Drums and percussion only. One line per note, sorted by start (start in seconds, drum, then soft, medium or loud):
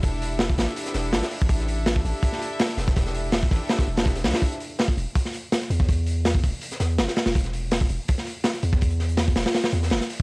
0.03 kick loud
0.03 closed hi-hat loud
0.03 open hi-hat medium
0.22 closed hi-hat medium
0.22 open hi-hat medium
0.39 snare loud
0.39 closed hi-hat medium
0.39 open hi-hat medium
0.50 kick medium
0.58 snare loud
0.58 closed hi-hat medium
0.58 open hi-hat medium
0.68 closed hi-hat soft
0.76 closed hi-hat medium
0.76 open hi-hat medium
0.86 snare medium
0.86 closed hi-hat soft
0.94 snare loud
0.94 closed hi-hat medium
0.94 open hi-hat medium
1.04 closed hi-hat soft
1.13 snare loud
1.13 closed hi-hat medium
1.13 open hi-hat medium
1.22 snare soft
1.22 snare loud
1.22 closed hi-hat medium
1.31 closed hi-hat soft
1.31 open hi-hat medium
1.41 kick medium
1.41 closed hi-hat medium
1.49 kick loud
1.49 closed hi-hat medium
1.49 open hi-hat loud
1.60 snare medium
1.60 closed hi-hat soft
1.68 closed hi-hat medium
1.68 open hi-hat medium
1.86 snare loud
1.86 closed hi-hat medium
1.86 open hi-hat medium
1.96 kick medium
2.05 closed hi-hat medium
2.05 open hi-hat medium
2.23 kick loud
2.23 closed hi-hat medium
2.23 open hi-hat medium
2.32 snare soft
2.42 closed hi-hat medium
2.42 open hi-hat medium
2.59 snare loud
2.59 closed hi-hat medium
2.59 open hi-hat loud
2.69 snare soft
2.69 closed hi-hat soft
2.78 snare loud
2.78 closed hi-hat medium
2.78 open hi-hat medium
2.87 kick medium
2.87 snare loud
2.87 closed hi-hat medium
2.96 kick loud
2.96 snare loud
2.96 closed hi-hat medium
2.96 open hi-hat medium
3.07 snare loud
3.07 closed hi-hat medium
3.14 closed hi-hat medium
3.14 open hi-hat medium
3.32 snare loud
3.32 closed hi-hat medium
3.32 open hi-hat medium
3.43 kick medium
3.51 kick loud
3.51 snare loud
3.51 closed hi-hat medium
3.51 open hi-hat medium
3.69 snare loud
3.69 closed hi-hat medium
3.69 open hi-hat medium
3.79 kick medium
3.79 snare loud
3.79 closed hi-hat medium
3.87 open hi-hat medium
3.97 snare loud
3.97 closed hi-hat medium
3.97 open hi-hat medium
4.06 kick medium
4.06 snare medium
4.06 closed hi-hat medium
4.15 snare loud
4.15 closed hi-hat medium
4.15 open hi-hat medium
4.24 snare loud
4.24 closed hi-hat medium
4.24 open hi-hat medium
4.34 snare loud
4.34 closed hi-hat medium
4.34 open hi-hat medium
4.42 kick loud
4.42 closed hi-hat medium
4.42 open hi-hat loud
4.52 snare medium
4.52 closed hi-hat soft
4.60 closed hi-hat medium
4.60 open hi-hat medium
4.79 snare loud
4.79 closed hi-hat medium
4.79 open hi-hat medium
4.88 kick loud
4.98 closed hi-hat medium
4.98 open hi-hat medium
5.15 kick loud
5.15 closed hi-hat medium
5.15 open hi-hat medium
5.25 snare soft
5.33 closed hi-hat medium
5.33 open hi-hat medium
5.52 snare loud
5.52 closed hi-hat medium
5.52 open hi-hat medium
5.62 snare soft
5.62 closed hi-hat soft
5.70 closed hi-hat medium
5.70 open hi-hat medium
5.80 kick loud
5.80 snare medium
5.89 kick loud
5.89 closed hi-hat medium
5.89 open hi-hat medium
6.07 closed hi-hat medium
6.07 open hi-hat medium
6.25 snare loud
6.25 closed hi-hat medium
6.25 open hi-hat medium
6.35 kick medium
6.44 kick medium
6.44 closed hi-hat medium
6.44 open hi-hat medium
6.54 closed hi-hat soft
6.61 closed hi-hat medium
6.61 open hi-hat medium
6.71 snare medium
6.71 closed hi-hat soft
6.80 snare loud
6.80 closed hi-hat medium
6.80 open hi-hat medium
6.90 closed hi-hat soft
6.98 snare loud
6.98 closed hi-hat medium
6.98 open hi-hat medium
7.08 snare medium
7.08 snare loud
7.08 closed hi-hat medium
7.16 snare loud
7.16 open hi-hat medium
7.26 snare loud
7.26 closed hi-hat medium
7.26 open hi-hat medium
7.35 kick loud
7.35 closed hi-hat medium
7.35 open hi-hat medium
7.44 snare medium
7.44 closed hi-hat soft
7.53 closed hi-hat medium
7.53 open hi-hat medium
7.71 snare loud
7.71 closed hi-hat medium
7.71 open hi-hat medium
7.81 kick loud
7.89 closed hi-hat medium
7.89 open hi-hat medium
8.08 kick loud
8.08 closed hi-hat medium
8.08 open hi-hat medium
8.18 snare soft
8.26 closed hi-hat medium
8.26 open hi-hat medium
8.44 snare loud
8.44 closed hi-hat medium
8.44 open hi-hat medium
8.54 snare soft
8.54 closed hi-hat soft
8.62 closed hi-hat medium
8.62 open hi-hat medium
8.73 kick loud
8.73 snare soft
8.81 kick loud
8.81 closed hi-hat medium
8.81 open hi-hat medium
8.90 closed hi-hat medium
8.99 snare medium
8.99 open hi-hat medium
9.09 closed hi-hat medium
9.17 snare loud
9.17 closed hi-hat medium
9.17 open hi-hat loud
9.28 kick medium
9.36 snare loud
9.36 closed hi-hat medium
9.36 open hi-hat medium
9.45 snare loud
9.45 closed hi-hat soft
9.45 open hi-hat medium
9.54 snare loud
9.54 closed hi-hat medium
9.54 open hi-hat medium
9.64 snare loud
9.64 open hi-hat medium
9.73 closed hi-hat medium
9.73 open hi-hat medium
9.83 snare medium
9.83 closed hi-hat medium
9.90 snare loud
9.90 open hi-hat medium
10.01 snare medium
10.01 closed hi-hat medium
10.10 closed hi-hat medium
10.10 open hi-hat medium